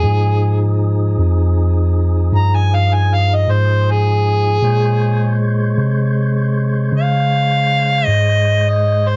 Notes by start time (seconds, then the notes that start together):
Already playing: G#4
0.02 G#2 F3 D#4 G#4
1.18 F2
2.33 G2 A#5
2.55 G#5
2.75 F5
2.94 G#5
3.14 F5
3.35 D#5
3.48 G#2 C5
3.91 G#4
4.62 A#2 G#3 C5 C#5
5.78 C3
6.92 C#3
6.97 F5
8.06 G#2 D#5
8.70 D#5
9.08 C5